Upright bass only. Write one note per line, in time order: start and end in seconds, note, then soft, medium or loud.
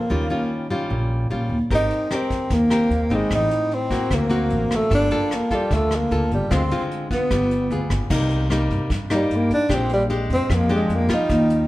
0.11 0.29 D#2 medium
0.91 1.28 A#1 medium
1.31 1.49 A#1 medium
1.49 1.59 D#2 medium
1.71 1.89 G#1 medium
2.51 2.88 D#2 medium
2.90 3.09 D#2 medium
3.10 3.20 G#1 medium
3.30 3.49 A1 medium
4.11 4.48 D2 medium
4.51 4.70 A1 medium
4.71 4.80 A1 medium
4.91 5.09 G1 medium
5.71 6.08 D2 medium
6.11 6.29 D2 medium
6.31 6.40 G1 medium
6.51 6.69 D2 loud
7.31 7.68 G1 medium
7.71 7.89 D2 medium
7.90 8.00 G1 medium
8.10 8.66 C2 loud
8.70 8.80 G2 medium
8.90 9.27 G2 medium
9.30 9.48 G2 medium
9.70 10.26 A#1 loud
10.30 10.39 F2 medium
10.50 10.87 F2 medium
10.89 11.08 F2 medium
11.30 11.68 D#2 loud